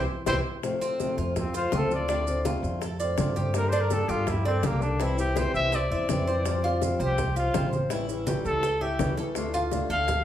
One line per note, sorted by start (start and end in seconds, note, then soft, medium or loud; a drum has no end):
0.26 0.40 C2 loud
0.26 0.38 E3 loud
0.26 0.38 G3 medium
0.26 0.39 C4 medium
0.26 0.38 C4 medium
0.26 0.38 E4 medium
0.26 0.39 E4 loud
0.26 0.39 G4 medium
0.26 0.36 C5 loud
0.26 high bongo loud
0.26 low conga loud
0.26 maracas medium
0.63 0.80 C3 medium
0.63 0.81 F3 medium
0.63 0.81 A3 medium
0.63 0.81 C4 medium
0.63 0.80 F4 medium
0.63 high bongo medium
0.63 high conga soft
0.63 maracas medium
0.81 0.99 A3 soft
0.81 1.17 C4 medium
0.81 0.99 C4 soft
0.81 0.99 F4 soft
0.81 high conga soft
0.81 maracas medium
0.99 1.35 C3 medium
0.99 1.35 F3 medium
0.99 1.35 A3 medium
0.99 1.35 C4 medium
0.99 1.35 F4 medium
0.99 high bongo medium
0.99 high conga medium
0.99 maracas medium
1.17 1.68 F2 medium
1.17 1.53 F4 medium
1.17 high bongo soft
1.17 high conga soft
1.17 maracas soft
1.36 1.54 C4 medium
1.36 muted nylon-string guitar stroke medium
1.36 high bongo medium
1.36 high conga soft
1.36 low conga medium
1.36 maracas medium
1.54 1.72 A3 soft
1.54 1.72 C4 soft
1.54 1.72 F4 soft
1.54 1.77 F4 medium
1.54 1.72 C5 medium
1.54 high bongo soft
1.54 high conga soft
1.54 maracas medium
1.72 2.57 D2 medium
1.72 1.90 C3 medium
1.72 1.90 F3 medium
1.72 1.90 A3 medium
1.72 1.90 C4 medium
1.72 2.08 F4 medium
1.72 1.89 F4 medium
1.72 high bongo medium
1.72 low bongo medium
1.72 high conga medium
1.72 maracas medium
1.76 1.93 A4 medium
1.90 2.08 A3 soft
1.90 2.08 C4 soft
1.90 2.08 F4 medium
1.90 2.43 D5 medium
1.90 high bongo soft
1.90 maracas soft
2.08 2.26 D3 medium
2.08 2.26 A3 medium
2.08 2.26 C4 medium
2.08 2.44 D4 medium
2.08 2.26 F4 medium
2.08 high bongo medium
2.08 high conga soft
2.08 maracas medium
2.27 2.44 A3 soft
2.27 2.45 C4 soft
2.27 2.44 F4 medium
2.27 high conga soft
2.27 maracas medium
2.45 2.80 D3 medium
2.45 2.81 A3 medium
2.45 2.81 C4 medium
2.45 2.81 F4 medium
2.45 high bongo medium
2.45 high conga medium
2.45 maracas medium
2.63 3.14 F2 medium
2.63 high bongo soft
2.63 maracas soft
2.81 2.99 A4 medium
2.81 muted nylon-string guitar stroke medium
2.81 high bongo medium
2.81 high conga soft
2.81 maracas medium
3.00 3.17 A3 soft
3.00 3.18 C4 soft
3.00 3.17 F4 soft
3.00 3.35 D5 medium
3.00 high bongo soft
3.00 high conga soft
3.00 maracas medium
3.17 4.03 G2 medium
3.17 3.35 D3 medium
3.17 3.36 A3 medium
3.17 3.35 C4 medium
3.17 3.34 F4 medium
3.17 high bongo medium
3.17 low bongo medium
3.17 high conga medium
3.17 maracas medium
3.36 3.54 A3 soft
3.36 3.54 C4 soft
3.36 3.54 F4 medium
3.36 3.72 G4 medium
3.36 high bongo soft
3.36 high conga medium
3.36 maracas soft
3.54 3.72 D3 medium
3.54 3.72 G3 medium
3.54 3.72 A#3 medium
3.54 3.71 D4 medium
3.54 3.71 A4 medium
3.54 3.70 A#4 medium
3.54 high bongo medium
3.54 high conga soft
3.54 maracas medium
3.69 4.08 D4 medium
3.69 3.90 D4 soft
3.69 3.90 A4 medium
3.69 3.82 C5 medium
3.69 maracas medium
3.73 3.90 A#3 soft
3.73 high conga soft
3.81 3.94 A#4 medium
3.90 4.25 D3 medium
3.90 4.25 G3 medium
3.90 4.26 A#3 medium
3.90 4.26 D4 medium
3.90 4.26 A4 medium
3.90 4.11 A4 medium
3.90 high bongo medium
3.90 high conga medium
3.90 maracas medium
4.08 4.59 G2 medium
4.08 4.30 F4 medium
4.08 4.44 G4 medium
4.08 high bongo soft
4.08 high conga soft
4.08 maracas soft
4.26 4.45 E4 medium
4.26 muted nylon-string guitar stroke medium
4.26 high bongo medium
4.26 high conga soft
4.26 low conga medium
4.26 maracas medium
4.45 4.62 A#3 soft
4.45 4.67 C4 medium
4.45 4.62 D4 soft
4.45 4.63 A4 medium
4.45 4.63 D5 medium
4.45 high bongo soft
4.45 high conga soft
4.62 5.48 C2 loud
4.62 4.80 D3 medium
4.62 4.81 G3 medium
4.62 4.81 A#3 medium
4.62 4.84 A#3 medium
4.62 4.80 D4 medium
4.62 4.99 G4 medium
4.62 4.79 A4 medium
4.62 high bongo medium
4.62 low bongo medium
4.62 high conga medium
4.62 maracas medium
4.81 4.99 A#3 soft
4.81 4.99 D4 soft
4.81 5.04 D4 medium
4.81 4.99 A4 medium
4.81 high bongo soft
4.81 maracas soft
4.99 5.17 C3 medium
4.99 5.17 E3 medium
4.99 5.17 G3 medium
4.99 5.17 C4 medium
4.99 5.16 E4 medium
4.99 5.35 E4 medium
4.99 5.19 E4 medium
4.99 high bongo medium
4.99 maracas medium
5.17 5.35 G3 soft
5.17 5.35 C4 soft
5.17 5.35 E4 soft
5.17 5.40 G4 medium
5.17 maracas medium
5.35 5.71 C3 medium
5.35 5.71 E3 medium
5.35 5.71 G3 medium
5.35 5.72 C4 medium
5.35 5.72 E4 medium
5.35 5.72 G4 medium
5.35 5.54 C5 medium
5.35 high bongo medium
5.35 high conga medium
5.35 maracas medium
5.54 5.88 C2 medium
5.54 5.77 E5 loud
5.54 high bongo soft
5.54 maracas soft
5.72 5.91 C5 medium
5.72 6.83 D5 medium
5.72 muted nylon-string guitar stroke medium
5.72 high bongo medium
5.72 high conga soft
5.72 maracas medium
5.90 6.07 E2 medium
5.90 6.08 G3 soft
5.90 6.08 C4 soft
5.90 6.08 E4 soft
5.90 6.27 E5 medium
5.90 high bongo soft
5.90 high conga soft
6.08 6.94 F2 medium
6.08 6.26 C3 medium
6.08 6.27 E3 medium
6.08 6.27 G3 medium
6.08 6.27 C4 medium
6.08 6.26 E4 medium
6.08 high bongo medium
6.08 low bongo medium
6.08 high conga medium
6.08 maracas medium
6.27 6.45 G3 soft
6.27 6.45 C4 soft
6.27 6.45 E4 soft
6.27 6.63 C5 medium
6.27 high bongo soft
6.27 maracas soft
6.45 6.63 F3 medium
6.45 6.63 G3 medium
6.45 6.63 C4 medium
6.45 6.62 F4 medium
6.45 high bongo medium
6.45 high conga soft
6.45 maracas medium
6.64 6.81 G3 soft
6.64 6.81 C4 soft
6.64 6.81 F4 soft
6.64 6.99 F4 medium
6.64 high conga soft
6.81 7.17 F3 medium
6.81 7.18 G3 medium
6.81 7.18 C4 medium
6.81 7.18 F4 medium
6.81 high bongo medium
6.81 high conga medium
6.81 maracas medium
6.99 7.50 C2 medium
6.99 7.35 G4 medium
6.99 7.35 C5 medium
6.99 high bongo soft
6.99 maracas soft
7.18 high bongo medium
7.18 high conga soft
7.18 low conga medium
7.18 maracas medium
7.36 7.54 G3 soft
7.36 7.54 C4 soft
7.36 7.54 F4 soft
7.36 7.71 F4 medium
7.36 7.54 F5 medium
7.36 high bongo soft
7.36 high conga soft
7.36 maracas medium
7.54 8.39 A1 medium
7.54 7.72 F3 medium
7.54 7.72 G3 medium
7.54 7.72 C4 medium
7.54 7.71 F4 medium
7.54 7.90 C5 medium
7.54 high bongo medium
7.54 low bongo medium
7.54 high conga medium
7.54 maracas medium
7.72 7.90 G3 soft
7.72 7.90 C4 soft
7.72 7.90 F4 soft
7.72 high bongo soft
7.72 high conga medium
7.72 maracas soft
7.90 8.08 E3 medium
7.90 8.08 G3 medium
7.90 8.08 C#4 medium
7.90 8.26 E4 medium
7.90 8.07 E4 medium
7.90 high bongo medium
7.90 high conga soft
7.90 maracas medium
8.09 8.26 G3 soft
8.09 8.27 C#4 soft
8.09 8.26 E4 medium
8.09 high conga soft
8.09 maracas medium
8.27 8.62 E3 medium
8.27 8.62 G3 medium
8.27 8.63 C#4 medium
8.27 8.63 E4 medium
8.27 8.62 G4 medium
8.27 high bongo medium
8.27 high conga medium
8.27 maracas medium
8.45 8.96 C#2 medium
8.45 8.83 A4 loud
8.45 high bongo soft
8.45 maracas soft
8.63 8.81 A4 medium
8.63 muted nylon-string guitar stroke medium
8.63 high bongo medium
8.63 high conga soft
8.63 maracas medium
8.81 8.98 G3 soft
8.81 8.99 C#4 soft
8.81 8.99 E4 soft
8.81 9.18 G4 medium
8.81 9.17 E5 medium
8.81 high bongo soft
8.81 high conga soft
8.99 9.84 D2 medium
8.99 9.17 E3 medium
8.99 9.17 G3 medium
8.99 9.17 C#4 medium
8.99 9.16 E4 medium
8.99 high bongo medium
8.99 low bongo medium
8.99 high conga medium
8.99 maracas medium
9.17 9.36 G3 soft
9.17 9.36 C#4 soft
9.17 9.35 E4 medium
9.17 9.53 A4 medium
9.17 high bongo soft
9.17 maracas soft
9.35 9.53 D3 medium
9.35 9.53 A3 medium
9.35 9.53 D4 medium
9.35 9.52 F4 medium
9.35 high bongo medium
9.35 high conga soft
9.35 maracas medium
9.53 9.71 A3 soft
9.53 9.71 D4 soft
9.53 9.71 F4 medium
9.53 9.89 F4 medium
9.53 high conga soft
9.53 maracas medium
9.71 10.07 D3 medium
9.71 10.07 A3 medium
9.71 10.07 D4 medium
9.71 10.08 F4 medium
9.71 high bongo medium
9.71 high conga medium
9.71 maracas medium
9.89 10.24 D2 medium
9.89 10.24 A4 medium
9.89 10.24 F5 loud
9.89 high bongo soft
9.89 high conga soft
9.89 maracas soft
10.08 muted nylon-string guitar stroke medium
10.08 high bongo medium
10.08 high conga soft
10.08 low conga medium
10.08 maracas medium